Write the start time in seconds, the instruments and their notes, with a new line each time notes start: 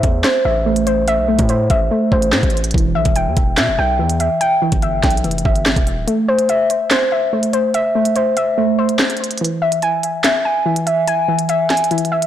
Already playing: synth pluck A3 C5 E5
0.03 808-style bass E2, kick, closed hi-hat
0.24 synth pluck C5, snare, clap, closed hi-hat
0.45 808-style bass A1, synth pluck E5
0.66 synth pluck A3
0.76 closed hi-hat
0.87 synth pluck C5, closed hi-hat
1.08 synth pluck E5, closed hi-hat
1.18 808-style bass B1
1.28 synth pluck A3
1.39 808-style bass A2, kick, closed hi-hat
1.49 synth pluck C5, closed hi-hat
1.70 808-style bass A1, synth pluck E5, kick, closed hi-hat
1.91 synth pluck A3
2.12 808-style bass A1, synth pluck C5, kick
2.22 closed hi-hat
2.32 808-style bass A2, snare, clap
2.43 808-style bass A1, kick, closed hi-hat
2.50 closed hi-hat
2.57 closed hi-hat
2.64 closed hi-hat
2.71 808-style bass E1, synth pluck E3, kick, closed hi-hat
2.78 closed hi-hat
2.95 808-style bass B1, synth pluck E5
3.05 808-style bass E1, kick, closed hi-hat
3.16 synth pluck G5, closed hi-hat
3.27 808-style bass E2
3.37 808-style bass E1, kick, closed hi-hat
3.57 808-style bass B2, synth pluck E5, snare, clap, closed hi-hat
3.68 808-style bass E1
3.78 808-style bass B1, synth pluck G5
3.99 808-style bass E2, synth pluck E3
4.10 closed hi-hat
4.20 synth pluck E5, closed hi-hat
4.41 synth pluck G5, closed hi-hat
4.62 synth pluck E3
4.72 808-style bass G1, kick, closed hi-hat
4.82 synth pluck E5, closed hi-hat
5.03 808-style bass B1, synth pluck G5, kick, snare, closed hi-hat
5.10 closed hi-hat
5.17 closed hi-hat
5.24 808-style bass F1, synth pluck E3, closed hi-hat
5.31 closed hi-hat
5.38 closed hi-hat
5.45 808-style bass G1, synth pluck E5, kick
5.56 closed hi-hat
5.66 snare, clap
5.76 808-style bass E1, kick, closed hi-hat
5.87 closed hi-hat, open hi-hat
5.97 808-style bass D1
6.07 synth pluck A3, closed hi-hat
6.28 synth pluck C5
6.39 closed hi-hat
6.49 synth pluck E5, closed hi-hat
6.70 closed hi-hat
6.91 synth pluck C5, snare, clap, closed hi-hat
7.12 synth pluck E5
7.33 synth pluck A3
7.43 closed hi-hat
7.53 synth pluck C5, closed hi-hat
7.74 synth pluck E5, closed hi-hat
7.95 synth pluck A3
8.05 closed hi-hat
8.16 synth pluck C5, closed hi-hat
8.37 synth pluck E5, closed hi-hat
8.58 synth pluck A3
8.79 synth pluck C5
8.89 closed hi-hat
8.99 snare, clap
9.10 closed hi-hat
9.17 closed hi-hat
9.24 closed hi-hat
9.31 closed hi-hat
9.38 synth pluck E3, closed hi-hat
9.45 closed hi-hat
9.62 synth pluck E5
9.72 closed hi-hat
9.82 synth pluck G#5, closed hi-hat
10.03 closed hi-hat
10.24 synth pluck E5, snare, clap, closed hi-hat
10.45 synth pluck G#5
10.66 synth pluck E3
10.76 closed hi-hat
10.87 synth pluck E5, closed hi-hat
11.08 synth pluck G#5, closed hi-hat
11.28 synth pluck E3
11.39 closed hi-hat
11.49 synth pluck E5, closed hi-hat
11.70 synth pluck G#5, snare, closed hi-hat
11.77 closed hi-hat
11.84 closed hi-hat
11.91 synth pluck E3, closed hi-hat
11.98 closed hi-hat
12.05 closed hi-hat
12.12 synth pluck E5
12.22 closed hi-hat